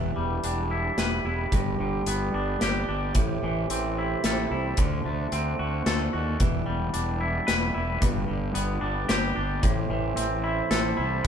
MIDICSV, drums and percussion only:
0, 0, Header, 1, 2, 480
1, 0, Start_track
1, 0, Tempo, 540541
1, 1353, Time_signature, 3, 2, 24, 8
1, 10008, End_track
2, 0, Start_track
2, 0, Title_t, "Drums"
2, 387, Note_on_c, 9, 42, 48
2, 475, Note_off_c, 9, 42, 0
2, 869, Note_on_c, 9, 38, 68
2, 869, Note_on_c, 9, 42, 48
2, 958, Note_off_c, 9, 38, 0
2, 958, Note_off_c, 9, 42, 0
2, 1352, Note_on_c, 9, 36, 89
2, 1353, Note_on_c, 9, 42, 53
2, 1440, Note_off_c, 9, 36, 0
2, 1442, Note_off_c, 9, 42, 0
2, 1834, Note_on_c, 9, 42, 55
2, 1922, Note_off_c, 9, 42, 0
2, 2319, Note_on_c, 9, 38, 61
2, 2319, Note_on_c, 9, 42, 52
2, 2407, Note_off_c, 9, 38, 0
2, 2407, Note_off_c, 9, 42, 0
2, 2794, Note_on_c, 9, 42, 61
2, 2799, Note_on_c, 9, 36, 95
2, 2883, Note_off_c, 9, 42, 0
2, 2887, Note_off_c, 9, 36, 0
2, 3286, Note_on_c, 9, 42, 55
2, 3375, Note_off_c, 9, 42, 0
2, 3764, Note_on_c, 9, 38, 67
2, 3764, Note_on_c, 9, 42, 60
2, 3853, Note_off_c, 9, 38, 0
2, 3853, Note_off_c, 9, 42, 0
2, 4237, Note_on_c, 9, 42, 61
2, 4243, Note_on_c, 9, 36, 94
2, 4326, Note_off_c, 9, 42, 0
2, 4332, Note_off_c, 9, 36, 0
2, 4725, Note_on_c, 9, 42, 50
2, 4813, Note_off_c, 9, 42, 0
2, 5206, Note_on_c, 9, 38, 72
2, 5206, Note_on_c, 9, 42, 51
2, 5295, Note_off_c, 9, 38, 0
2, 5295, Note_off_c, 9, 42, 0
2, 5682, Note_on_c, 9, 42, 53
2, 5686, Note_on_c, 9, 36, 95
2, 5771, Note_off_c, 9, 42, 0
2, 5775, Note_off_c, 9, 36, 0
2, 6161, Note_on_c, 9, 42, 51
2, 6250, Note_off_c, 9, 42, 0
2, 6641, Note_on_c, 9, 38, 69
2, 6641, Note_on_c, 9, 42, 59
2, 6730, Note_off_c, 9, 38, 0
2, 6730, Note_off_c, 9, 42, 0
2, 7120, Note_on_c, 9, 42, 61
2, 7121, Note_on_c, 9, 36, 95
2, 7209, Note_off_c, 9, 42, 0
2, 7210, Note_off_c, 9, 36, 0
2, 7593, Note_on_c, 9, 42, 59
2, 7682, Note_off_c, 9, 42, 0
2, 8073, Note_on_c, 9, 38, 73
2, 8073, Note_on_c, 9, 42, 57
2, 8162, Note_off_c, 9, 38, 0
2, 8162, Note_off_c, 9, 42, 0
2, 8552, Note_on_c, 9, 42, 61
2, 8553, Note_on_c, 9, 36, 97
2, 8641, Note_off_c, 9, 42, 0
2, 8642, Note_off_c, 9, 36, 0
2, 9032, Note_on_c, 9, 42, 55
2, 9120, Note_off_c, 9, 42, 0
2, 9509, Note_on_c, 9, 38, 68
2, 9509, Note_on_c, 9, 42, 50
2, 9598, Note_off_c, 9, 38, 0
2, 9598, Note_off_c, 9, 42, 0
2, 10008, End_track
0, 0, End_of_file